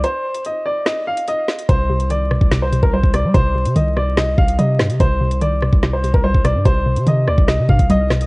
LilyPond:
<<
  \new Staff \with { instrumentName = "Upright piano" } { \time 4/4 \key c \minor \tempo 4 = 145 c''4 ees''8 d''8 ees''8 f''8 ees''4 | c''4 d''4~ d''16 c''8 bes'16 c''8 d''8 | c''4 ees''8 d''8 ees''8 f''8 ees''4 | c''4 d''4~ d''16 c''8 bes'16 c''8 d''8 |
c''4 ees''8 d''8 ees''8 f''8 ees''4 | }
  \new Staff \with { instrumentName = "Synth pluck" } { \clef bass \time 4/4 \key c \minor r1 | c8 c8 ees8 c8 c8 c8 g8 c8 | c8 c8 ees8 c8 c8 c8 g8 c8 | c8 c8 ees8 c8 c8 c8 g8 c8 |
c8 c8 ees8 c8 c8 c8 g8 c8 | }
  \new Staff \with { instrumentName = "808-style bass" } { \clef bass \time 4/4 \key c \minor r1 | c,4.~ c,16 c,4 c,8 c,8 g16 | c,8. c16 c,4. c,8 c8 g,16 c16 | c,4.~ c,16 c,4 c,8 c,8 g,16 |
c,8. c16 c8 d,16 c,8 c16 g,16 c,16 c,4 | }
  \new DrumStaff \with { instrumentName = "Drums" } \drummode { \time 4/4 hh8. hh16 hh4 sn8. hh16 hh8 sn16 hh16 | <hh bd>8. hh16 hh8 ss16 bd16 <hh sn>8 hh16 bd16 r16 bd16 <hh ss>8 | <hh bd>8. hh16 hh8 ss8 sn8 bd16 hh16 hh8 <ss sn>16 hh16 | <hh bd>8. hh16 hh8 ss16 bd16 <hh sn>8 hh16 bd16 r16 bd16 <hh ss>8 |
<hh bd>8. hh16 hh8 ss16 bd16 sn8 bd16 <hh bd>16 hh8 <ss sn>16 hh16 | }
>>